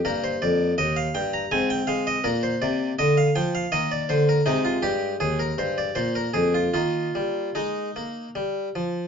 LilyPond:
<<
  \new Staff \with { instrumentName = "Harpsichord" } { \time 3/4 \key ees \major \tempo 4 = 81 bes'16 c''16 d''8 ees''16 f''16 g''16 bes''16 aes''16 g''16 f''16 ees''16 | bes'16 c''16 d''8 ees''16 f''16 g''16 f''16 ees''16 d''16 c''16 bes'16 | ees'16 f'16 g'8 aes'16 bes'16 c''16 d''16 c''16 bes'16 aes'16 f'16 | f'4 ees'4 r4 | }
  \new Staff \with { instrumentName = "Harpsichord" } { \clef bass \time 3/4 \key ees \major << { bes2 c'4 | bes2 bes4 | aes2 bes4 | bes2. | } \\ { g,8 f,8 ees,8 g,8 aes,8 aes8 | bes,8 c8 d8 f8 ees8 d8 | c8 g,8 ees,8 g,8 bes,8 f,8 | ees8 g8 aes8 bes8 g8 f8 | } >> }
>>